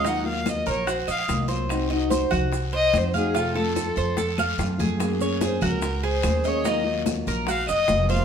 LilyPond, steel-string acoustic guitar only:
\new Staff \with { instrumentName = "Steel-string acoustic guitar" } { \time 4/4 \key ees \dorian \tempo 4 = 145 <ees ges bes f'>8 <ges bes f'>4. r4 <ees ges bes f'>8 <ges bes f'>8 | <c' ees' ges'>8 <ees' ges'>4. r4 <c' ees' ges'>8 <ees' ges'>8 | <c f a c' f'>8 <f a c' f'>4. r4 <f a c' f'>8 <f a c' f'>8 | <ges bes des' aes'>8 <bes des' aes'>4. r4 <ges bes des' aes'>8 <bes des' aes'>8 |
<ees ges bes f'>8 <ges bes f'>4. r4 <ees ges bes f'>8 <ges bes f'>8 | }